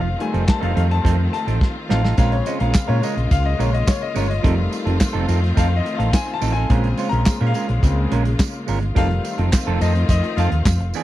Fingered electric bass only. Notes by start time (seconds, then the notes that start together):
Already playing: F1
0.34 F1
0.63 F1
0.77 F2
1.05 F2
1.47 A1
1.91 A1
2.18 A#1
2.61 A#1
2.75 muted fingered electric bass stroke
2.89 A#2
3.17 A#1
3.31 C#2
3.59 A#1
4.16 G1
4.44 F1
4.86 F1
5.14 F1
5.29 F2
5.57 F2
5.99 A1
6.42 A1
6.70 A#1
7.13 A#1
7.41 A#2
7.70 A#1
7.83 C#2
8.12 A#1
8.69 G1
8.96 F1
9.39 F1
9.67 F1
9.81 F2
10.09 F2
10.37 F2
10.52 D#2
10.65 F2
10.80 F1